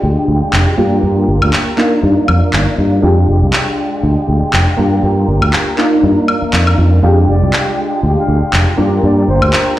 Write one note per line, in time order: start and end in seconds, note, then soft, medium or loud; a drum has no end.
0.00 0.14 D2 medium
0.00 0.73 G#3 medium
0.00 0.76 G#3 medium
0.00 0.74 D4 medium
0.00 0.76 D4 medium
0.00 0.74 F4 medium
0.00 0.74 G4 loud
0.00 1.75 G5 medium
0.28 0.39 D2 medium
0.42 muted fingered electric bass stroke soft
0.53 0.64 F1 medium
0.53 clap loud
0.77 0.99 G2 medium
0.77 1.73 A#3 medium
0.77 1.74 D4 medium
0.77 1.74 F4 medium
0.77 1.77 F4 medium
0.77 1.74 G4 medium
0.77 3.01 A#4 medium
1.03 1.24 G2 medium
1.28 1.39 G1 medium
1.42 1.51 D2 medium
1.42 high woodblock medium
1.53 clap loud
1.77 2.98 A#3 medium
1.77 2.98 D4 medium
1.77 2.99 D#4 medium
1.77 2.99 F4 loud
1.77 3.02 D5 medium
1.77 3.02 F5 medium
1.77 clap medium
2.03 2.14 G2 medium
2.28 2.40 F2 medium
2.28 high woodblock medium
2.42 muted fingered electric bass stroke soft
2.53 2.65 G1 medium
2.53 clap loud
2.78 2.99 G2 medium
3.02 3.24 F2 medium
3.02 4.73 G#3 medium
3.02 4.76 G#3 medium
3.02 4.73 D4 medium
3.02 4.77 D4 medium
3.02 4.74 F4 medium
3.02 4.74 G4 loud
3.02 5.76 G5 medium
3.28 3.39 F1 medium
3.42 3.51 C2 medium
3.53 clap loud
4.03 4.14 D2 medium
4.28 4.40 D2 medium
4.42 muted fingered electric bass stroke soft
4.53 4.65 F1 medium
4.53 clap loud
4.77 4.99 G2 medium
4.77 5.73 A#3 medium
4.77 5.73 D4 medium
4.77 5.74 F4 medium
4.77 5.77 F4 medium
4.77 5.74 G4 medium
4.77 7.01 A#4 medium
5.03 5.24 G2 medium
5.28 5.39 G1 medium
5.42 5.51 D2 medium
5.42 high woodblock medium
5.53 clap loud
5.78 6.98 A#3 medium
5.78 6.99 D4 medium
5.78 6.99 D#4 medium
5.78 6.99 F4 loud
5.78 7.02 D5 medium
5.78 7.02 F5 medium
5.78 clap medium
6.03 6.14 G2 medium
6.28 high woodblock medium
6.42 muted fingered electric bass stroke soft
6.53 6.74 F2 medium
6.53 clap loud
6.67 high woodblock medium
6.78 6.99 F2 loud
7.02 7.24 F2 medium
7.02 8.73 G#3 medium
7.02 8.76 G#3 medium
7.02 8.74 D4 medium
7.02 8.77 D4 medium
7.02 8.74 F4 medium
7.02 8.74 G4 loud
7.02 8.76 G5 medium
7.28 7.39 F1 medium
7.28 7.78 D5 medium
7.42 7.51 C2 medium
7.53 clap loud
8.03 8.14 D2 medium
8.17 8.67 F5 medium
8.28 8.39 D2 medium
8.42 muted fingered electric bass stroke soft
8.53 8.64 F1 medium
8.53 clap loud
8.77 8.99 G2 medium
8.77 9.73 A#3 medium
8.77 9.73 D4 medium
8.77 9.77 F4 medium
8.77 9.74 F4 medium
8.77 9.74 G4 medium
8.77 9.79 A#4 medium
8.77 9.77 G5 medium
9.03 9.24 G2 medium
9.03 9.12 D5 medium
9.17 9.24 D5 medium
9.28 9.39 G1 medium
9.28 9.78 C5 medium
9.42 9.51 D2 medium
9.42 high woodblock medium
9.53 clap loud